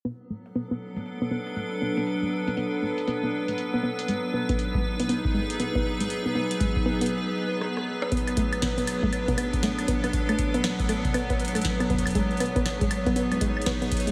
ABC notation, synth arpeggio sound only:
X:1
M:4/4
L:1/16
Q:"Swing 16ths" 1/4=119
K:Bm
V:1 name="Synth arpeggio sound"
B, z A, z B, B, z A, z B, B, z A, z B, B, | z A, z B, B, z A, z B, B, z A, z B, B, z | ^G, z B, B, z G, z B, B, z G, z B, B, z G, | z B, B, z ^G, z B, B, z8 |
B, z A, z B, B, z A, z B, B, z A, z B, B, | z A, z B, B, z A, z B, B, z A, z B, B, z | ^G, z B, B, z G, z B, B, z G, z B, B, z G, |]